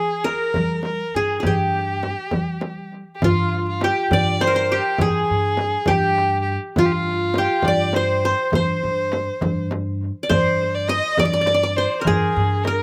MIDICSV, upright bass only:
0, 0, Header, 1, 2, 480
1, 0, Start_track
1, 0, Tempo, 590551
1, 1167, Time_signature, 6, 3, 24, 8
1, 10427, End_track
2, 0, Start_track
2, 0, Title_t, "Upright bass"
2, 0, Program_c, 0, 32
2, 455, Note_on_c, 0, 55, 95
2, 816, Note_off_c, 0, 55, 0
2, 932, Note_on_c, 0, 43, 75
2, 1112, Note_off_c, 0, 43, 0
2, 1179, Note_on_c, 0, 43, 88
2, 1722, Note_off_c, 0, 43, 0
2, 1897, Note_on_c, 0, 55, 85
2, 2442, Note_off_c, 0, 55, 0
2, 2619, Note_on_c, 0, 43, 97
2, 3163, Note_off_c, 0, 43, 0
2, 3339, Note_on_c, 0, 43, 97
2, 3883, Note_off_c, 0, 43, 0
2, 4065, Note_on_c, 0, 43, 87
2, 4244, Note_off_c, 0, 43, 0
2, 4310, Note_on_c, 0, 43, 78
2, 4669, Note_off_c, 0, 43, 0
2, 4786, Note_on_c, 0, 43, 103
2, 5328, Note_off_c, 0, 43, 0
2, 5509, Note_on_c, 0, 43, 96
2, 6049, Note_off_c, 0, 43, 0
2, 6217, Note_on_c, 0, 43, 99
2, 6761, Note_off_c, 0, 43, 0
2, 6929, Note_on_c, 0, 43, 93
2, 7113, Note_off_c, 0, 43, 0
2, 7180, Note_on_c, 0, 43, 82
2, 7541, Note_off_c, 0, 43, 0
2, 7657, Note_on_c, 0, 43, 101
2, 8199, Note_off_c, 0, 43, 0
2, 8374, Note_on_c, 0, 43, 97
2, 8916, Note_off_c, 0, 43, 0
2, 9084, Note_on_c, 0, 43, 99
2, 9629, Note_off_c, 0, 43, 0
2, 9800, Note_on_c, 0, 43, 91
2, 9984, Note_off_c, 0, 43, 0
2, 10048, Note_on_c, 0, 43, 90
2, 10409, Note_off_c, 0, 43, 0
2, 10427, End_track
0, 0, End_of_file